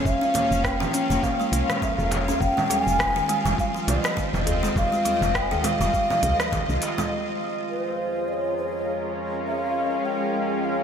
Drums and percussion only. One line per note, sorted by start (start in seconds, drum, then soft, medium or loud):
0.05 kick loud
0.05 cabasa medium
0.23 cabasa soft
0.34 open hi-hat medium
0.34 djembe tone medium
0.34 low conga medium
0.52 cabasa medium
0.64 kick loud
0.64 cross-stick medium
0.64 cabasa medium
0.81 low conga medium
0.81 cabasa soft
0.94 open hi-hat medium
1.11 djembe slap medium
1.11 cabasa medium
1.23 kick medium
1.23 low conga medium
1.23 cabasa medium
1.41 cabasa soft
1.53 open hi-hat loud
1.70 cross-stick medium
1.70 low conga medium
1.70 cabasa medium
1.82 kick loud
1.82 djembe tone medium
1.82 cabasa medium
1.99 djembe tone medium
1.99 cabasa soft
2.11 open hi-hat medium
2.11 djembe slap medium
2.11 low conga medium
2.28 djembe tone medium
2.28 cabasa medium
2.41 kick loud
2.41 cabasa medium
2.58 low conga medium
2.58 cabasa soft
2.70 open hi-hat medium
2.70 djembe tone medium
2.88 cabasa medium
2.99 kick medium
2.99 cross-stick medium
2.99 low conga medium
2.99 cabasa soft
3.16 djembe tone soft
3.16 cabasa soft
3.29 open hi-hat loud
3.46 djembe slap medium
3.46 low conga medium
3.46 cabasa medium
3.58 kick loud
3.58 cabasa medium
3.76 cabasa soft
3.88 open hi-hat loud
3.88 low conga medium
4.05 cross-stick medium
4.05 cabasa medium
4.17 kick loud
4.17 cabasa medium
4.34 low conga medium
4.34 cabasa soft
4.47 open hi-hat medium
4.47 djembe bass medium
4.63 djembe slap medium
4.63 djembe tone medium
4.63 cabasa medium
4.76 kick loud
4.76 low conga medium
4.76 cabasa medium
4.93 djembe slap soft
4.93 cabasa soft
5.05 open hi-hat loud
5.05 djembe tone medium
5.22 low conga medium
5.22 cabasa medium
5.35 kick loud
5.35 cross-stick medium
5.35 cabasa soft
5.52 djembe bass medium
5.52 cabasa soft
5.64 open hi-hat medium
5.64 low conga medium
5.81 djembe slap medium
5.81 cabasa medium
5.94 kick loud
5.94 cabasa medium
6.10 low conga medium
6.10 cabasa soft
6.23 open hi-hat loud
6.23 djembe slap soft
6.23 djembe bass medium
6.40 cross-stick medium
6.40 cabasa medium
6.52 kick loud
6.52 djembe tone medium
6.52 low conga medium
6.52 cabasa medium
6.70 djembe tone medium
6.70 cabasa soft
6.82 open hi-hat medium
6.82 djembe slap medium
6.98 djembe tone medium
6.98 low conga medium
6.98 cabasa medium